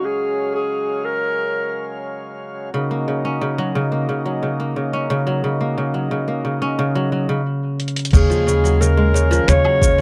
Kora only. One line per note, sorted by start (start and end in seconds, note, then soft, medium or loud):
2.74 3.07 C#3 medium
2.91 3.91 A#3 medium
3.08 3.40 C#3 medium
3.25 4.93 C#4 medium
3.41 3.74 C#3 medium
3.58 3.80 F#3 medium
3.75 4.08 C#3 medium
3.92 4.59 A#3 medium
4.09 4.41 C#3 medium
4.26 4.47 F#3 medium
4.43 4.75 C#3 medium
4.60 5.60 A#3 medium
4.76 5.09 C#3 medium
4.93 6.61 C#4 medium
5.10 5.43 C#3 medium
5.27 5.49 F#3 medium
5.44 5.76 C#3 medium
5.61 6.27 A#3 medium
5.78 6.10 C#3 medium
5.94 6.16 F#3 medium
6.11 6.43 C#3 medium
6.28 8.21 A#3 medium
6.45 6.77 C#3 medium
6.62 8.36 C#4 medium
6.79 7.28 C#3 medium
6.95 7.11 F#3 medium
7.12 7.34 F#3 medium
7.29 8.12 C#3 medium
8.13 8.46 C#3 medium
8.30 8.52 F3 medium
8.47 8.80 C#3 medium
8.64 8.86 F#3 medium
8.81 9.13 C#3 medium
8.97 10.01 G#3 medium
9.14 9.47 C#3 loud
9.31 9.53 F3 loud
9.48 9.80 C#3 loud
9.64 9.87 F#3 medium
9.81 10.01 C#3 medium